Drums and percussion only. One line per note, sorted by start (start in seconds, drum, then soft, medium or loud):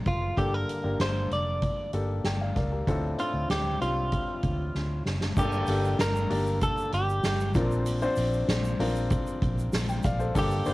0.05 kick medium
0.05 closed hi-hat medium
0.37 kick medium
0.37 closed hi-hat medium
0.69 closed hi-hat medium
1.00 snare loud
1.00 closed hi-hat medium
1.31 closed hi-hat medium
1.62 kick medium
1.62 closed hi-hat medium
1.93 closed hi-hat medium
2.24 snare medium
2.24 closed hi-hat medium
2.56 kick medium
2.56 snare soft
2.56 closed hi-hat medium
2.87 kick medium
2.87 closed hi-hat medium
3.19 closed hi-hat medium
3.50 snare loud
3.50 closed hi-hat medium
3.82 closed hi-hat medium
4.12 kick medium
4.12 closed hi-hat medium
4.43 kick medium
4.43 closed hi-hat medium
4.75 snare soft
5.06 snare medium
5.21 snare medium
5.36 kick loud
5.36 crash loud
5.36 shaker medium
5.52 shaker soft
5.67 hi-hat pedal medium
5.67 open hi-hat medium
5.67 shaker medium
5.85 shaker medium
5.99 snare loud
5.99 hi-hat pedal medium
5.99 open hi-hat loud
5.99 shaker medium
6.16 shaker medium
6.30 hi-hat pedal medium
6.30 open hi-hat medium
6.47 shaker soft
6.61 kick loud
6.61 hi-hat pedal medium
6.61 open hi-hat medium
6.61 shaker medium
6.78 shaker soft
6.92 hi-hat pedal medium
6.92 open hi-hat medium
7.10 shaker medium
7.23 snare medium
7.23 hi-hat pedal medium
7.23 open hi-hat medium
7.23 shaker medium
7.40 shaker medium
7.54 kick loud
7.54 snare soft
7.54 hi-hat pedal medium
7.54 open hi-hat medium
7.54 shaker medium
7.71 shaker soft
7.86 hi-hat pedal medium
7.86 open hi-hat medium
7.86 shaker medium
8.02 shaker medium
8.16 hi-hat pedal medium
8.16 open hi-hat medium
8.16 shaker medium
8.33 shaker soft
8.48 snare loud
8.48 hi-hat pedal medium
8.48 open hi-hat medium
8.48 shaker medium
8.64 shaker medium
8.80 hi-hat pedal medium
8.80 open hi-hat medium
8.96 shaker soft
9.10 kick loud
9.10 hi-hat pedal medium
9.10 open hi-hat medium
9.10 shaker medium
9.27 shaker medium
9.42 kick medium
9.42 hi-hat pedal medium
9.42 open hi-hat medium
9.58 shaker soft
9.73 snare loud
9.73 hi-hat pedal medium
9.73 open hi-hat medium
9.73 shaker medium
9.89 shaker medium
10.03 kick loud
10.03 snare soft
10.03 hi-hat pedal medium
10.03 open hi-hat medium
10.03 shaker medium
10.20 shaker soft
10.35 kick loud
10.35 hi-hat pedal medium
10.35 open hi-hat medium
10.35 shaker medium
10.51 shaker medium
10.65 hi-hat pedal medium
10.65 open hi-hat medium
10.65 shaker medium